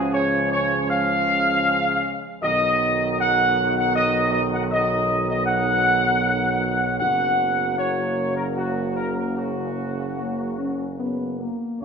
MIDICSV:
0, 0, Header, 1, 5, 480
1, 0, Start_track
1, 0, Tempo, 764331
1, 84, Time_signature, 3, 2, 24, 8
1, 4884, Tempo, 806452
1, 7307, End_track
2, 0, Start_track
2, 0, Title_t, "Trumpet section"
2, 0, Program_c, 0, 61
2, 0, Note_on_c, 0, 68, 80
2, 78, Note_off_c, 0, 68, 0
2, 82, Note_on_c, 0, 73, 94
2, 306, Note_off_c, 0, 73, 0
2, 324, Note_on_c, 0, 73, 99
2, 547, Note_off_c, 0, 73, 0
2, 563, Note_on_c, 0, 77, 112
2, 1412, Note_off_c, 0, 77, 0
2, 1519, Note_on_c, 0, 75, 105
2, 1977, Note_off_c, 0, 75, 0
2, 2009, Note_on_c, 0, 78, 109
2, 2343, Note_off_c, 0, 78, 0
2, 2376, Note_on_c, 0, 78, 94
2, 2482, Note_off_c, 0, 78, 0
2, 2482, Note_on_c, 0, 75, 104
2, 2705, Note_off_c, 0, 75, 0
2, 2718, Note_on_c, 0, 75, 99
2, 2772, Note_off_c, 0, 75, 0
2, 2847, Note_on_c, 0, 78, 85
2, 2899, Note_off_c, 0, 78, 0
2, 2960, Note_on_c, 0, 75, 90
2, 3291, Note_off_c, 0, 75, 0
2, 3316, Note_on_c, 0, 75, 81
2, 3427, Note_off_c, 0, 75, 0
2, 3427, Note_on_c, 0, 78, 105
2, 4371, Note_off_c, 0, 78, 0
2, 4390, Note_on_c, 0, 78, 96
2, 4857, Note_off_c, 0, 78, 0
2, 4890, Note_on_c, 0, 73, 81
2, 5212, Note_off_c, 0, 73, 0
2, 5234, Note_on_c, 0, 70, 66
2, 5287, Note_off_c, 0, 70, 0
2, 5352, Note_on_c, 0, 66, 65
2, 5574, Note_off_c, 0, 66, 0
2, 5590, Note_on_c, 0, 70, 68
2, 5703, Note_off_c, 0, 70, 0
2, 5719, Note_on_c, 0, 70, 55
2, 5827, Note_on_c, 0, 66, 65
2, 5828, Note_off_c, 0, 70, 0
2, 6770, Note_off_c, 0, 66, 0
2, 7285, Note_on_c, 0, 73, 74
2, 7307, Note_off_c, 0, 73, 0
2, 7307, End_track
3, 0, Start_track
3, 0, Title_t, "French horn section"
3, 0, Program_c, 1, 60
3, 0, Note_on_c, 1, 56, 65
3, 0, Note_on_c, 1, 61, 73
3, 1416, Note_off_c, 1, 56, 0
3, 1416, Note_off_c, 1, 61, 0
3, 1522, Note_on_c, 1, 66, 78
3, 1526, Note_on_c, 1, 59, 78
3, 4374, Note_off_c, 1, 66, 0
3, 4406, Note_on_c, 1, 66, 68
3, 4863, Note_off_c, 1, 59, 0
3, 4887, Note_on_c, 1, 58, 61
3, 6247, Note_off_c, 1, 66, 0
3, 6268, Note_off_c, 1, 58, 0
3, 6316, Note_on_c, 1, 58, 53
3, 6540, Note_off_c, 1, 58, 0
3, 6554, Note_on_c, 1, 61, 57
3, 6779, Note_off_c, 1, 61, 0
3, 6795, Note_on_c, 1, 59, 57
3, 7025, Note_off_c, 1, 59, 0
3, 7041, Note_on_c, 1, 58, 45
3, 7268, Note_off_c, 1, 58, 0
3, 7286, Note_on_c, 1, 77, 62
3, 7288, Note_on_c, 1, 68, 59
3, 7307, Note_off_c, 1, 68, 0
3, 7307, Note_off_c, 1, 77, 0
3, 7307, End_track
4, 0, Start_track
4, 0, Title_t, "Trombone section"
4, 0, Program_c, 2, 61
4, 0, Note_on_c, 2, 49, 69
4, 0, Note_on_c, 2, 53, 64
4, 1413, Note_off_c, 2, 49, 0
4, 1413, Note_off_c, 2, 53, 0
4, 1520, Note_on_c, 2, 51, 78
4, 4373, Note_off_c, 2, 51, 0
4, 4407, Note_on_c, 2, 54, 62
4, 4894, Note_on_c, 2, 49, 52
4, 7067, Note_off_c, 2, 54, 0
4, 7091, Note_off_c, 2, 49, 0
4, 7307, End_track
5, 0, Start_track
5, 0, Title_t, "Tuba"
5, 0, Program_c, 3, 58
5, 0, Note_on_c, 3, 37, 67
5, 1354, Note_off_c, 3, 37, 0
5, 1527, Note_on_c, 3, 35, 72
5, 4405, Note_on_c, 3, 30, 59
5, 4415, Note_off_c, 3, 35, 0
5, 7090, Note_off_c, 3, 30, 0
5, 7307, End_track
0, 0, End_of_file